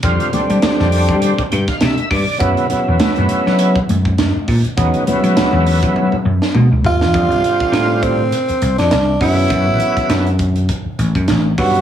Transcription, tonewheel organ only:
X:1
M:4/4
L:1/16
Q:"Swing 16ths" 1/4=101
K:Amix
V:1 name="Tonewheel organ"
[D,G,=C=F]2 [D,G,CD]8 g =f e2 d2 | [C,F,B,E]2 [C,F,B,E]8 z6 | [C,F,B,_E]2 [C,F,B,=E]8 z6 | [D,G,=C=F]8 z6 [^C,^F,B,E]2- |
[C,F,B,E]6 z8 [C,F,B,E]2 |]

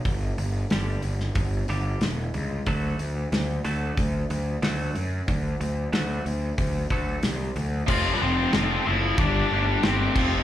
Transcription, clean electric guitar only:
X:1
M:4/4
L:1/8
Q:1/4=92
K:Dmix
V:1 name="Clean electric guitar" clef=bass
[G,,D,] [G,,D,] [G,,D,G,] [G,,D,] [G,,D,] [G,,D,G,] [G,,D,] [G,,D,] | [D,F,A,] [D,F,] [D,F,] [D,F,A,] [D,F,] [D,F,] [D,F,A,] [D,F,] | [D,F,] [D,F,] [D,F,A,] [D,F,] [D,F,] [D,F,A,] [D,F,] [D,F,] | z8 |]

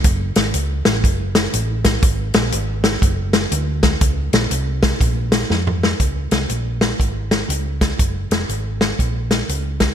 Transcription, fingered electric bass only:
X:1
M:4/4
L:1/8
Q:"Swing" 1/4=121
K:Gblyd
V:1 name="Fingered electric bass" clef=bass
G,,, A,,, D,, =A,,, G,,,2 A,,,2 | A,,, B,,, A,,,2 G,,,2 =D,,2 | D,, B,,, C,,2 B,,,2 F,,2 | D,, C,, B,,,2 A,,,2 D,,2 |
G,,, F,,, A,,,2 B,,,2 D,,2 |]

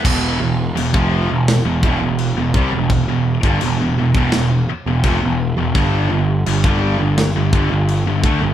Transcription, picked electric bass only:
X:1
M:4/4
L:1/16
Q:1/4=84
K:Em
V:1 name="Picked electric bass" clef=bass
E,,,2 E,,,2 E,,, =F,,,2 E,,,2 E,,, E,,, E,,,2 E,,, C,, E,,,- | E,,, E,,,2 G,,, E,,, E,,, E,,, E,,, E,,,2 z E,,, =F,,, E,,,2 E,,, | G,,,2 G,,,2 G,,, G,,,2 G,,,2 G,,, G,,, G,,,2 G,,, D,, G,,, |]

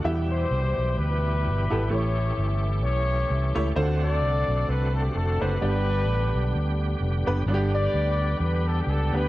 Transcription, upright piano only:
X:1
M:4/4
L:1/16
Q:"Swing" 1/4=129
K:G
V:1 name="Upright piano"
[B,EGe]4 z8 z2 [B,EGA] z | [A,EG^c]4 z8 z2 [A,EGc] z | [A,D=F^Fc]4 z8 z2 [A,DFc] z | [B,DGd]4 z8 z2 [B,DGB] z |
[B,DFG]4 z8 z2 [B,DG] z |]
V:2 name="Upright piano" clef=bass
E,6 z8 z2 | A,,6 z8 z2 | D,6 z8 z2 | G,,6 z8 z2 |
G,,6 z8 z2 |]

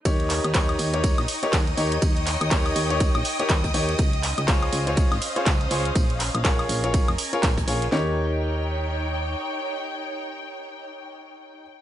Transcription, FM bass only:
X:1
M:4/4
L:1/16
Q:"Swing 16ths" 1/4=122
K:Ebmix
V:1 name="FM bass" clef=bass
E,,3 E,,3 E,,3 B,,, z2 E,,2 E,,2 | E,,3 E,,3 E,,3 B,,, z2 E,,2 E,,2 | D,,3 D,,3 D,,3 A,,, z2 D,,2 D,,2 | B,,,3 B,,,3 B,,,3 F,,, z2 B,,,2 B,,,2 |
E,,12 z4 | z16 |]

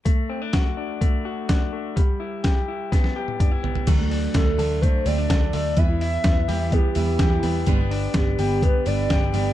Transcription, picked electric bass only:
X:1
M:4/4
L:1/16
Q:1/4=126
K:Dmix
V:1 name="Picked electric bass" clef=bass
z16 | z16 | D,,4 D,,2 D,,3 z D,,2 D,,2 D,,2 | E,,4 E,,2 E,,3 z E,,2 E,,2 E,,2 |
G,,,4 G,,,2 G,,,3 z G,,,2 G,,,2 G,,,2 |]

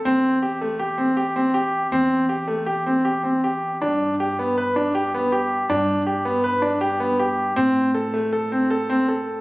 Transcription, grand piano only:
X:1
M:5/4
L:1/8
Q:1/4=160
K:G
V:1 name="Grand piano"
C2 G A, G C G C G2 | C2 G A, G C G C G2 | D2 G B, B D G B, G2 | D2 G B, B D G B, G2 |
C2 A A, A C A C A2 |]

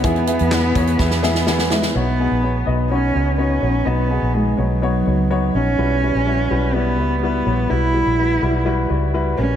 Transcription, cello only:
X:1
M:4/4
L:1/8
Q:1/4=125
K:E
V:1 name="Cello"
B,6- B, G, | [K:B] B,3 z C2 C2 | B,2 G, F,4 C- | C4 B,2 B,2 |
E4 z3 C |]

